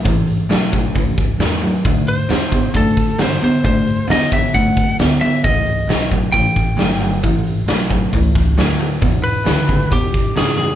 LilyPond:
<<
  \new Staff \with { instrumentName = "Lead electric guitar" } { \time 4/4 \key a \mixolydian \tempo 4 = 134 r1 | r8 c''4. a'4 c''8 c''8 | c''4 dis''8 e''8 fis''4 r8 e''8 | dis''4. r8 g''2 |
r1 | r8 b'4. g'4 gis'8 gis'8 | }
  \new Staff \with { instrumentName = "Overdriven electric guitar" } { \clef bass \time 4/4 \key a \mixolydian <a, e>4 <a, fis>8 <a, fis>8 <a, e>4 <a, fis>8 <a, fis>8 | <d a>4 <d b>8 <d b>8 <d a>4 <d b>8 <d b>8 | <d a>4 <d b>8 <d b>8 <d a>4 <d b>8 <d b>8 | <a, e>4 <a, fis>8 <a, fis>8 <a, e>4 <a, fis>8 <a, fis>8 |
<a, e>4 <a, fis>8 <a, fis>8 <a, e>4 <a, fis>8 <a, fis>8 | <e, b,>4 <e, cis>8 <e, cis>8 <e, b,>4 <e, cis>8 <e, cis>8 | }
  \new Staff \with { instrumentName = "Upright bass" } { \clef bass \time 4/4 \key a \mixolydian a,,4 b,,4 cis,4 e,4 | d,4 e,4 fis,8 r8 g,8 r8 | fis,4 e,4 fis,4 d,8 r8 | cis,4 b,,4 a,,4 g,,4 |
a,,4 b,,4 cis,4 d,4 | e,4 d,4 e,4 fis,4 | }
  \new DrumStaff \with { instrumentName = "Drums" } \drummode { \time 4/4 <hho bd>8 hho8 <hho sn>8 <hho bd>8 <hho bd>8 <hho bd>8 <hho sn>8 hho8 | <hho bd>8 hho8 <hho sn>8 <hho bd>8 <hho bd>8 <hho bd>8 <hho sn>8 hho8 | <hho bd>8 hho8 <hho sn>8 <hho bd>8 <hho bd>8 <hho bd>8 <hho sn>8 hho8 | <hho bd>8 hho8 <hho sn>8 <hho bd>8 <hho bd>8 <hho bd>8 <hho sn>8 hho8 |
<hho bd>8 hho8 <hho sn>8 <hho bd>8 <hho bd>8 <hho bd>8 <hho sn>8 hho8 | <hho bd>8 hho8 <hho sn>8 <hho bd>8 <hho bd>8 <hho bd>8 <hho sn>8 hho8 | }
>>